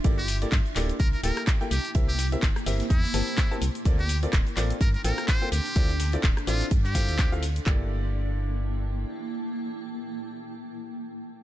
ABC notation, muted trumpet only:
X:1
M:4/4
L:1/16
Q:"Swing 16ths" 1/4=126
K:Gdor
V:1 name="Muted trumpet"
z G2 z4 z B B B2 z2 G2 | z G2 z4 z E6 z2 | z G2 z4 z B B B2 c2 G2- | G4 z2 F2 z G4 z3 |
z16 | z16 |]